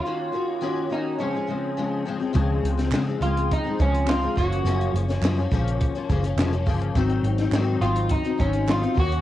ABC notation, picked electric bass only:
X:1
M:4/4
L:1/16
Q:1/4=104
K:Db
V:1 name="Picked electric bass" clef=bass
z16 | D,,2 D,,2 D,2 D,,3 z D,,4 G,,,2 | G,,,2 G,,,2 G,,2 B,,,3 z G,,,2 F,,,2 =G,,,2 | A,,,2 A,,,2 A,,2 A,,,3 z A,,,4 E,,2 |]